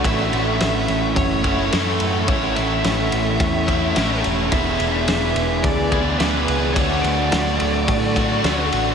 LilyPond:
<<
  \new Staff \with { instrumentName = "Analog synth pad" } { \time 4/4 \key a \major \tempo 4 = 107 << { <a' fis'' cis'''>1~ | <a' fis'' cis'''>1 | <b' gis'' d'''>1 | <a' fis'' cis'''>1 | } \\ { e''1~ | e''1~ | e''1 | d''1 | } >> }
  \new Staff \with { instrumentName = "Lead electric guitar" } { \time 4/4 \key a \major e''2 cis''4 a'4 | cis''8 e''2. r8 | e''2 d''4 b'4 | cis''8 d''2. r8 | }
  \new Staff \with { instrumentName = "Overdriven electric guitar" } { \time 4/4 \key a \major <a, e a cis' e'>2~ <a, e a cis' e'>8 <a, e a cis' e'>8 <a, e a cis' e'>4 | <a, e a cis' e'>2~ <a, e a cis' e'>8 <a, e a cis' e'>8 <a, e a cis' e'>4 | <e b d' gis'>2~ <e b d' gis'>8 <e b d' gis'>8 <e b d' gis'>4 | <d fis a d' fis'>2~ <d fis a d' fis'>8 <d fis a d' fis'>8 <d fis a d' fis'>4 | }
  \new Staff \with { instrumentName = "Overdriven electric guitar" } { \time 4/4 \key a \major <a, e a cis' e'>2~ <a, e a cis' e'>8 <a, e a cis' e'>8 <a, e a cis' e'>4 | <a, e a cis' e'>2~ <a, e a cis' e'>8 <a, e a cis' e'>8 <a, e a cis' e'>4 | <e b d' gis'>2~ <e b d' gis'>8 <e b d' gis'>8 <e b d' gis'>4 | <d fis a d' fis'>2~ <d fis a d' fis'>8 <d fis a d' fis'>8 <d fis a d' fis'>4 | }
  \new Staff \with { instrumentName = "Picked electric bass" } { \clef bass \time 4/4 \key a \major a,,8 a,,8 a,,8 a,,8 fis,,4 fis,8 fis,8 | a,,8 a,,8 a,,8 a,,8 e,4 a,,8 e,,8 | e,,8 e,,8 e,,8 e,,8 d,4 d,8 cis,8 | d,8 d,8 d,8 d,8 a,4 d,8 a,,8 | }
  \new DrumStaff \with { instrumentName = "Drums" } \drummode { \time 4/4 <bd cymr>8 cymr8 <cymr sn>8 cymr8 <bd cymr>8 <bd cymr>8 <cymr sn>8 cymr8 | <bd cymr>8 cymr8 <cymr sn>8 cymr8 <bd cymr>8 <bd cymr>8 <cymr sn>8 cymr8 | <bd cymr>8 cymr8 <cymr sn>8 cymr8 <bd cymr>8 <bd cymr>8 <cymr sn>8 cymr8 | <bd cymr>8 cymr8 <cymr sn>8 cymr8 <bd cymr>8 <bd cymr>8 <cymr sn>8 cymr8 | }
>>